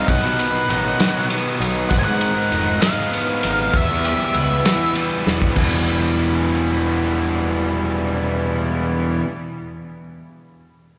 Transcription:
Already playing: pipe organ D#3, overdriven electric guitar D#4
0.08 picked electric bass B1, overdriven electric guitar B2, pipe organ F#3 B3 D#4, lead electric guitar F#5, kick, ride, shaker
0.23 picked electric bass B2
0.39 overdriven electric guitar B4, ride
0.69 picked electric bass A1, overdriven electric guitar D#4, ride
0.99 overdriven electric guitar F#3, snare, ride, shaker
1.30 overdriven electric guitar B3, ride
1.60 picked electric bass B1, overdriven electric guitar D#4, ride
1.90 picked electric bass G#1, overdriven electric guitar G#2, pipe organ G#3 B3 A#4, lead electric guitar F#5, kick, ride, shaker
1.99 lead electric guitar G#5
2.05 picked electric bass G#2, lead electric guitar F#5
2.21 overdriven electric guitar A#4, ride
2.51 picked electric bass F1, overdriven electric guitar D#4, ride
2.81 overdriven electric guitar G#3, lead electric guitar F5, snare, ride, shaker
3.11 overdriven electric guitar B3, ride
3.41 picked electric bass G#1, overdriven electric guitar D#4, ride
3.73 picked electric bass E1, overdriven electric guitar E2, pipe organ E3 G3 E4, lead electric guitar E5, kick, ride, shaker
3.89 picked electric bass E2, shaker
4.04 overdriven electric guitar G4, ride, shaker
4.34 picked electric bass C#2, overdriven electric guitar B3, ride
4.49 shaker
4.64 overdriven electric guitar E3, snare, ride, shaker
4.95 overdriven electric guitar G3, ride
5.10 shaker
5.26 picked electric bass E1, overdriven electric guitar B3, snare
5.42 kick, shaker
5.55 picked electric bass E1, overdriven electric guitar E2 B2 E3 G3 B3 E4, pipe organ E3 G3 B3 E4, kick, crash, shaker

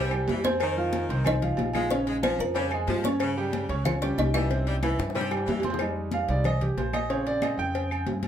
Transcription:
Already playing: upright bass C2, saxophone section G3, kalimba A#4 A#5
0.11 grand piano G3 G4 G5, high conga, high timbale, low agogo, claves
0.28 upright bass F2, saxophone section E3, cowbell, high conga, low timbale
0.44 grand piano C4 C5 C6, kalimba C4 C5, cowbell, high conga, low timbale, low agogo
0.60 saxophone section D#3, cowbell, high conga, low agogo, claves
0.77 grand piano F3 F4 F5, high conga
0.92 cowbell, high conga, low timbale, low agogo
1.09 upright bass C2, grand piano C4 C5 C6, cowbell, high conga
1.25 kalimba D#4 D#5, cowbell, high conga, low conga, low agogo, claves
1.42 grand piano F3 F4 F5, cowbell, high conga, low conga
1.57 upright bass A#1, cowbell, high conga, low timbale, low agogo
1.73 grand piano F3 F4 F5, saxophone section G#3, cowbell, high conga, low agogo, claves
1.90 grand piano C#3 C#4 C#5, kalimba C#4 C#5, cowbell, high conga
2.07 saxophone section G#3, cowbell, high conga
2.23 grand piano F3 F4 F5, saxophone section F3, kalimba C4 C5, cowbell, high conga, low timbale, low agogo, claves
2.38 upright bass F2, kalimba A#4 A#5, low agogo
2.54 grand piano C#3 C#4 C#5, saxophone section G3, cowbell, high conga, low agogo
2.71 grand piano G#3 G#4 G#5, high conga, low agogo, claves
2.87 upright bass G2, saxophone section F3, cowbell, high conga, low timbale
3.03 kalimba C#4 C#5, grand piano C#4 C#5 C#6, cowbell, high conga, low agogo
3.20 saxophone section C#3, cowbell, high conga, low agogo, claves
3.37 grand piano G3 G4 G5, high conga
3.53 cowbell, high conga, low timbale, low agogo
3.69 upright bass C#2, grand piano C#4 C#5 C#6, cowbell, high conga
3.85 kalimba F4 F5, cowbell, high conga, low conga, low agogo, claves
4.02 grand piano G3 G4 G5, kalimba C#4 C#5, cowbell, high conga
4.18 upright bass C2, kalimba D#4 D#5, cowbell, high conga, low timbale, low agogo
4.34 grand piano E3 E4 E5, saxophone section G3, kalimba E4 E5, cowbell, high conga, low agogo, claves
4.50 grand piano C3 C4 C5, cowbell
4.67 saxophone section G3, cowbell, high conga
4.82 saxophone section E3, grand piano E3 E4 E5, cowbell, high conga, low timbale, low agogo, claves
4.99 upright bass G2, high bongo, high conga, low agogo
5.10 high bongo
5.14 grand piano C3 C4 C5, saxophone section G3, cowbell, high conga, high timbale, low agogo
5.21 high bongo
5.31 grand piano G3 G4 G5, high bongo, high conga, low agogo, claves
5.37 high timbale
5.47 upright bass F2, saxophone section E3, cowbell, high conga, low timbale
5.60 cowbell, low timbale
5.64 grand piano C4 C5 C6, high conga, low agogo
5.70 low bongo, low timbale
5.79 grand piano G3 G#3 D#4, cowbell, high conga, low agogo, claves
5.96 high conga
6.11 grand piano F5, cowbell, high conga, low timbale, low agogo
6.28 upright bass C2, grand piano G3 G#3 D#4 D5, cowbell, high conga
6.44 grand piano D#5, cowbell, high conga, low conga, low agogo, claves
6.61 grand piano G4, cowbell, high conga, low conga
6.77 upright bass A#1, grand piano C5, cowbell, high conga, low timbale, low agogo
6.93 grand piano D#5, cowbell, high conga, low agogo, claves
7.10 grand piano C#3 C4 G#4 C#5, cowbell, high conga
7.26 grand piano D5, cowbell, high conga
7.42 grand piano D#5, cowbell, high conga, low timbale, low agogo, claves
7.58 upright bass F2, grand piano G5, high conga, low agogo
7.75 cowbell, high conga, low agogo
7.91 high conga, low agogo, claves
8.06 upright bass G2, cowbell, high conga, low timbale
8.23 cowbell, high conga, low agogo

